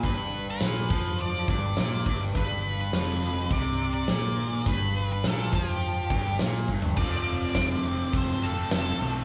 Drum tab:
CC |----------------|----------------|----------------|x---------------|
HH |x---x---x---x---|x---x---x---x---|x---x---x---x---|----x---x---x---|
SD |----o----o--o---|----o-o-----o---|----o-------o---|----o----o--o---|
FT |----------------|----------------|---------------o|----------------|
BD |o-----o---o---o-|o-------o-------|o-----o---o---o-|o---o---o-------|